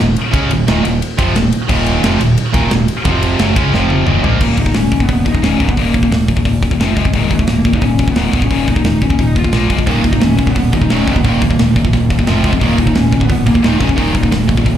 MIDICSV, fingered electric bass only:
0, 0, Header, 1, 2, 480
1, 0, Start_track
1, 0, Tempo, 341103
1, 470, Time_signature, 4, 2, 24, 8
1, 20791, End_track
2, 0, Start_track
2, 0, Title_t, "Fingered electric bass"
2, 0, Program_c, 0, 33
2, 0, Note_on_c, 0, 27, 84
2, 213, Note_off_c, 0, 27, 0
2, 472, Note_on_c, 0, 37, 106
2, 693, Note_off_c, 0, 37, 0
2, 710, Note_on_c, 0, 27, 85
2, 932, Note_off_c, 0, 27, 0
2, 959, Note_on_c, 0, 27, 97
2, 1176, Note_off_c, 0, 27, 0
2, 1200, Note_on_c, 0, 27, 77
2, 1416, Note_off_c, 0, 27, 0
2, 1676, Note_on_c, 0, 29, 105
2, 1893, Note_off_c, 0, 29, 0
2, 1903, Note_on_c, 0, 27, 87
2, 2125, Note_off_c, 0, 27, 0
2, 2386, Note_on_c, 0, 27, 102
2, 2829, Note_off_c, 0, 27, 0
2, 2862, Note_on_c, 0, 29, 102
2, 3083, Note_off_c, 0, 29, 0
2, 3102, Note_on_c, 0, 27, 82
2, 3323, Note_off_c, 0, 27, 0
2, 3580, Note_on_c, 0, 27, 98
2, 3801, Note_off_c, 0, 27, 0
2, 3817, Note_on_c, 0, 27, 91
2, 4039, Note_off_c, 0, 27, 0
2, 4300, Note_on_c, 0, 29, 106
2, 4743, Note_off_c, 0, 29, 0
2, 4779, Note_on_c, 0, 30, 101
2, 4999, Note_off_c, 0, 30, 0
2, 5017, Note_on_c, 0, 37, 93
2, 5237, Note_off_c, 0, 37, 0
2, 5253, Note_on_c, 0, 29, 95
2, 5698, Note_off_c, 0, 29, 0
2, 5728, Note_on_c, 0, 27, 101
2, 5948, Note_off_c, 0, 27, 0
2, 5957, Note_on_c, 0, 34, 98
2, 6206, Note_off_c, 0, 34, 0
2, 6206, Note_on_c, 0, 27, 91
2, 6411, Note_off_c, 0, 27, 0
2, 6442, Note_on_c, 0, 27, 87
2, 6649, Note_off_c, 0, 27, 0
2, 6681, Note_on_c, 0, 27, 85
2, 6888, Note_off_c, 0, 27, 0
2, 6922, Note_on_c, 0, 27, 73
2, 7129, Note_off_c, 0, 27, 0
2, 7164, Note_on_c, 0, 27, 87
2, 7370, Note_off_c, 0, 27, 0
2, 7407, Note_on_c, 0, 27, 87
2, 7612, Note_off_c, 0, 27, 0
2, 7637, Note_on_c, 0, 27, 85
2, 7846, Note_off_c, 0, 27, 0
2, 7885, Note_on_c, 0, 27, 89
2, 8091, Note_off_c, 0, 27, 0
2, 8128, Note_on_c, 0, 27, 96
2, 8333, Note_off_c, 0, 27, 0
2, 8367, Note_on_c, 0, 27, 86
2, 8573, Note_off_c, 0, 27, 0
2, 8601, Note_on_c, 0, 27, 84
2, 9013, Note_off_c, 0, 27, 0
2, 9084, Note_on_c, 0, 27, 88
2, 9495, Note_off_c, 0, 27, 0
2, 9567, Note_on_c, 0, 29, 95
2, 9773, Note_off_c, 0, 29, 0
2, 9808, Note_on_c, 0, 29, 92
2, 10014, Note_off_c, 0, 29, 0
2, 10047, Note_on_c, 0, 27, 98
2, 10253, Note_off_c, 0, 27, 0
2, 10289, Note_on_c, 0, 27, 89
2, 10495, Note_off_c, 0, 27, 0
2, 10526, Note_on_c, 0, 27, 90
2, 10733, Note_off_c, 0, 27, 0
2, 10767, Note_on_c, 0, 27, 82
2, 10974, Note_off_c, 0, 27, 0
2, 11006, Note_on_c, 0, 27, 85
2, 11214, Note_off_c, 0, 27, 0
2, 11250, Note_on_c, 0, 27, 83
2, 11456, Note_off_c, 0, 27, 0
2, 11479, Note_on_c, 0, 27, 91
2, 11690, Note_off_c, 0, 27, 0
2, 11730, Note_on_c, 0, 27, 89
2, 11937, Note_off_c, 0, 27, 0
2, 11972, Note_on_c, 0, 27, 93
2, 12178, Note_off_c, 0, 27, 0
2, 12217, Note_on_c, 0, 27, 88
2, 12421, Note_off_c, 0, 27, 0
2, 12444, Note_on_c, 0, 27, 83
2, 12859, Note_off_c, 0, 27, 0
2, 12933, Note_on_c, 0, 27, 85
2, 13344, Note_off_c, 0, 27, 0
2, 13408, Note_on_c, 0, 34, 89
2, 13617, Note_off_c, 0, 34, 0
2, 13650, Note_on_c, 0, 34, 90
2, 13895, Note_off_c, 0, 34, 0
2, 13895, Note_on_c, 0, 27, 95
2, 14102, Note_off_c, 0, 27, 0
2, 14133, Note_on_c, 0, 27, 83
2, 14341, Note_off_c, 0, 27, 0
2, 14378, Note_on_c, 0, 27, 87
2, 14584, Note_off_c, 0, 27, 0
2, 14620, Note_on_c, 0, 27, 84
2, 14825, Note_off_c, 0, 27, 0
2, 14863, Note_on_c, 0, 27, 95
2, 15068, Note_off_c, 0, 27, 0
2, 15106, Note_on_c, 0, 27, 88
2, 15309, Note_off_c, 0, 27, 0
2, 15345, Note_on_c, 0, 27, 94
2, 15549, Note_off_c, 0, 27, 0
2, 15589, Note_on_c, 0, 27, 89
2, 15792, Note_off_c, 0, 27, 0
2, 15827, Note_on_c, 0, 27, 97
2, 16031, Note_off_c, 0, 27, 0
2, 16072, Note_on_c, 0, 27, 86
2, 16274, Note_off_c, 0, 27, 0
2, 16320, Note_on_c, 0, 27, 91
2, 16724, Note_off_c, 0, 27, 0
2, 16798, Note_on_c, 0, 27, 92
2, 17203, Note_off_c, 0, 27, 0
2, 17271, Note_on_c, 0, 29, 93
2, 17475, Note_off_c, 0, 29, 0
2, 17510, Note_on_c, 0, 29, 92
2, 17714, Note_off_c, 0, 29, 0
2, 17758, Note_on_c, 0, 27, 97
2, 17960, Note_off_c, 0, 27, 0
2, 17989, Note_on_c, 0, 27, 87
2, 18194, Note_off_c, 0, 27, 0
2, 18233, Note_on_c, 0, 27, 90
2, 18437, Note_off_c, 0, 27, 0
2, 18474, Note_on_c, 0, 27, 86
2, 18678, Note_off_c, 0, 27, 0
2, 18711, Note_on_c, 0, 27, 90
2, 18916, Note_off_c, 0, 27, 0
2, 18957, Note_on_c, 0, 27, 86
2, 19160, Note_off_c, 0, 27, 0
2, 19191, Note_on_c, 0, 27, 92
2, 19397, Note_off_c, 0, 27, 0
2, 19435, Note_on_c, 0, 27, 95
2, 19639, Note_off_c, 0, 27, 0
2, 19675, Note_on_c, 0, 27, 96
2, 19880, Note_off_c, 0, 27, 0
2, 19913, Note_on_c, 0, 27, 83
2, 20118, Note_off_c, 0, 27, 0
2, 20152, Note_on_c, 0, 27, 89
2, 20562, Note_off_c, 0, 27, 0
2, 20634, Note_on_c, 0, 27, 88
2, 20791, Note_off_c, 0, 27, 0
2, 20791, End_track
0, 0, End_of_file